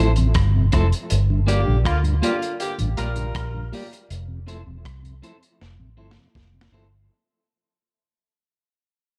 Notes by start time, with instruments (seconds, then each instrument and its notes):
Already playing: clean electric guitar C4
0.00 fingered electric bass A1, clean electric guitar E4 A4 C5
0.16 tonewheel organ F2 C3, muted clean electric guitar stroke, closed hi-hat
0.34 fingered electric bass G1, kick, cross-stick, closed hi-hat
0.56 tonewheel organ F2 C3
0.72 fingered electric bass F1, tonewheel organ F3 A3 E4, clean electric guitar C4 E4 A4 C5, kick, cross-stick, closed hi-hat
0.92 closed hi-hat
1.10 fingered electric bass G1, closed hi-hat
1.30 tonewheel organ G2 D3
1.47 horn section D3 A#3 G4, tonewheel organ G3 A#3 F4, clean electric guitar A#3 F4 G4 D5, closed hi-hat
1.66 fingered electric bass A#1, tonewheel organ G2 D3
1.85 fingered electric bass D2, horn section D3 A#3 F4, kick, cross-stick, closed hi-hat
2.03 tonewheel organ G2 D3, closed hi-hat
2.21 horn section D3 A#3 F4, tonewheel organ G3 A#3 F4, clean electric guitar A#3 F4 G4 D5, closed hi-hat
2.42 muted clean electric guitar stroke, closed hi-hat
2.60 horn section D3 A#3 G4, closed hi-hat
2.78 fingered electric bass A1, tonewheel organ G2 D3, closed hi-hat
2.97 fingered electric bass A#1, tonewheel organ G3 A#3 F4, horn section G3 F4 A#4, clean electric guitar A#3 F4 G4 D5, closed hi-hat
3.16 tonewheel organ G2 D3, muted clean electric guitar stroke, closed hi-hat
3.35 fingered electric bass A#1, kick, cross-stick, closed hi-hat
3.54 tonewheel organ G2 D3
3.72 tonewheel organ G3 A#3 F4, clean electric guitar A#3 F4 G4 D5, open hi-hat
3.92 muted clean electric guitar stroke, closed hi-hat
4.10 fingered electric bass F1, closed hi-hat
4.28 tonewheel organ F2 C3
4.47 tonewheel organ F3 A3 E4, clean electric guitar C4 E4 A4 C5, closed hi-hat
4.66 fingered electric bass E1, tonewheel organ F2 C3
4.85 fingered electric bass C2, kick, cross-stick, closed hi-hat
5.02 tonewheel organ F2 C3, closed hi-hat
5.22 tonewheel organ F3 A3 E4, clean electric guitar C4 E4 A4 C5, closed hi-hat
5.40 muted clean electric guitar stroke, closed hi-hat
5.61 fingered electric bass F1, snare
5.79 fingered electric bass A1, tonewheel organ F2 C3
5.97 fingered electric bass G1, tonewheel organ F3 A3 E4, clean electric guitar C4 E4 A4 C5
6.11 snare
6.16 tonewheel organ F2 C3, muted clean electric guitar stroke
6.35 fingered electric bass F1, kick, snare
6.54 tonewheel organ F2 C3
6.61 snare
6.72 fingered electric bass G1, tonewheel organ F3 A3 E4, clean electric guitar C4 E4 A4 C5